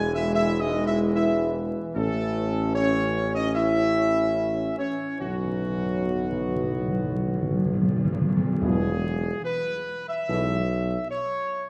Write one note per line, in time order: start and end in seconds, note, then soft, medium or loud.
0.00 1.78 E1 medium
0.00 5.16 E3 medium
0.00 1.78 G#3 loud
0.14 0.33 E4 loud
0.14 0.33 E5 loud
0.34 0.59 E4 medium
0.34 0.59 E5 loud
0.60 0.88 D#4 medium
0.60 0.87 D#5 loud
0.87 1.12 E4 loud
0.87 0.99 E5 loud
1.15 1.52 E4 medium
1.15 1.52 E5 loud
1.95 4.88 A1 medium
1.95 2.71 A3 loud
1.95 6.02 C#4 medium
1.95 2.71 A4 loud
2.75 3.35 C#4 medium
2.75 3.31 C#5 loud
3.35 3.45 D#4 medium
3.35 3.54 D#5 loud
3.54 4.75 E4 loud
3.54 4.74 E5 loud
4.78 5.18 C#4 medium
4.78 5.18 C#5 loud
5.20 8.25 B1 medium
5.20 5.28 B2 soft
5.20 8.25 E3 medium
5.20 7.77 F#3 medium
5.20 7.73 F#4 medium
5.29 5.36 B2 soft
5.37 5.44 B2 soft
5.45 5.51 B2 soft
5.52 5.59 B2 soft
5.61 5.67 B2 soft
5.68 5.75 B2 soft
5.76 5.83 B2 soft
5.84 5.91 B2 soft
5.92 5.99 B2 soft
6.00 6.07 B2 soft
6.06 6.15 B2 soft
6.06 8.29 B3 medium
6.16 6.23 B2 medium
6.24 6.31 B2 medium
6.32 6.39 B2 medium
6.40 6.46 B2 medium
6.47 6.54 B2 medium
6.56 6.62 B2 medium
6.64 6.70 B2 medium
6.72 6.79 B2 medium
6.80 6.87 B2 medium
6.88 6.95 B2 medium
6.96 7.03 B2 medium
7.04 7.10 B2 medium
7.11 7.18 B2 medium
7.19 7.26 B2 medium
7.27 7.33 B2 medium
7.35 7.41 B2 medium
7.42 7.49 B2 medium
7.50 7.57 B2 medium
7.58 7.65 B2 medium
7.66 7.72 B2 medium
7.73 7.80 B2 medium
7.81 7.88 B2 medium
7.89 7.95 B2 medium
7.97 8.04 B2 medium
8.05 8.12 B2 loud
8.13 8.20 B2 loud
8.21 8.28 B2 loud
8.29 8.36 B2 loud
8.37 8.43 B2 loud
8.45 8.51 B2 loud
8.52 8.59 B2 loud
8.61 9.31 E1 medium
8.61 9.83 E2 loud
8.61 8.92 B2 medium
8.61 8.92 E3 medium
8.61 8.92 G#3 medium
8.61 8.92 E4 medium
8.61 9.40 G#4 loud
9.44 10.04 B4 loud
10.08 11.06 E5 loud
10.29 10.97 B1 medium
10.29 10.59 B2 medium
10.29 10.59 E3 medium
10.29 10.59 G#3 medium
10.29 10.59 E4 medium
11.10 11.66 C#5 loud